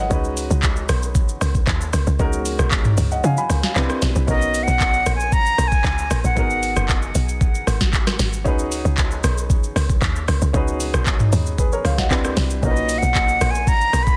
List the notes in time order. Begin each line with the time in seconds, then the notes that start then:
Already playing: G#3 B3 D#4 F#4 G#4 A#4 B4 C#5
0.00 D#5 F#5
0.10 C#2 G#3 C#4 D#4 F#4 B4, kick, shaker
0.24 shaker
0.37 open hi-hat, shaker
0.51 C#2, shaker
0.63 kick, clap, shaker
0.76 shaker
0.89 B1, cross-stick, open hi-hat, shaker
1.03 shaker
1.15 kick, shaker
1.29 shaker
1.41 C#2, cross-stick, open hi-hat, shaker
1.55 kick, shaker
1.67 D#2, kick, clap, shaker
1.81 shaker
1.93 C#2, cross-stick, open hi-hat, shaker
2.07 C#2, shaker
2.19 C#2 G#3 C#4 D#4 F#4 A#4, kick, shaker
2.33 shaker
2.45 open hi-hat, shaker
2.59 B1, cross-stick, shaker
2.71 kick, clap, shaker
2.85 mid tom, shaker
2.98 C#2, open hi-hat, shaker
3.11 D#5 F#5, shaker
3.24 C#3 F5 G#5, shaker
3.37 G#5 B5, shaker
3.50 C#2, cross-stick, open hi-hat, shaker
3.63 F5 G#5, snare, shaker
3.76 C2 C4 D4 E4 G4 B4, clap, shaker
3.90 cross-stick, shaker
4.02 B1, snare, open hi-hat, shaker
4.15 C2, shaker
4.27 B1 B3 C#4 D#4 F#4 A#4 D#5, kick, shaker
4.42 shaker
4.54 open hi-hat, shaker
4.63 F#5
4.68 B1, shaker
4.80 kick, clap, shaker
4.94 shaker
5.06 A#1, cross-stick, open hi-hat, shaker
5.16 G#5
5.20 shaker
5.32 A#5, kick, shaker
5.46 shaker
5.58 B1, cross-stick, open hi-hat, shaker
5.68 G#5
5.72 kick, shaker
5.84 C#2, kick, clap, shaker
5.98 shaker
6.11 A#1, cross-stick, open hi-hat, shaker
6.24 A#1 F#5, shaker
6.35 G#1 B3 D#4 F#4 G#4 A#4, kick, shaker
6.50 shaker
6.63 open hi-hat, shaker
6.76 F#1, cross-stick, shaker
6.89 kick, clap, shaker
7.02 shaker
7.15 B1, open hi-hat, shaker
7.29 shaker
7.41 kick, shaker
7.55 shaker
7.67 G#1, cross-stick, open hi-hat, shaker
7.81 kick, snare, shaker
7.93 kick, clap, shaker
8.07 cross-stick, snare, shaker
8.19 G#1, snare, open hi-hat, shaker
8.33 shaker
8.44 C#2 C#4 D#4 F#4 G#4 B4, kick, shaker
8.59 shaker
8.72 open hi-hat, shaker
8.85 C#2, shaker
8.98 kick, clap, shaker
9.11 shaker
9.24 B1, cross-stick, open hi-hat, shaker
9.38 shaker
9.50 kick, shaker
9.64 shaker
9.76 C#2, cross-stick, open hi-hat, shaker
9.90 kick, shaker
10.02 D#2, kick, clap, shaker
10.16 shaker
10.28 C#2, cross-stick, open hi-hat, shaker
10.42 C#2, shaker
10.53 C#2 C#4 D#4 F#4 G#4 B4, kick, shaker
10.68 shaker
10.80 open hi-hat, shaker
10.94 B1, cross-stick, shaker
11.06 kick, clap, shaker
11.20 mid tom, shaker
11.32 D#2, open hi-hat, shaker
11.46 shaker
11.58 G#4 B4, kick, shaker
11.72 A#4 C#5, shaker
11.85 C#2 C#5 F5, cross-stick, open hi-hat, shaker
11.98 D#5 F#5, kick, snare, shaker
12.10 C4 D4 E4 G4 B4, kick, clap, shaker
12.24 cross-stick, shaker
12.37 C2, snare, open hi-hat, shaker
12.50 shaker
12.62 B1 A#2 C#4 D#4 F#4 A#4 D#5, kick, shaker
12.71 B4
12.76 shaker
12.89 open hi-hat, shaker
12.98 F#5
13.03 B1, shaker
13.15 kick, clap, shaker
13.28 shaker
13.41 A#1, cross-stick, open hi-hat, shaker
13.51 G#5
13.55 shaker
13.67 A#5, kick, shaker
13.81 shaker
13.93 B1, cross-stick, open hi-hat, shaker
14.03 B5, kick, shaker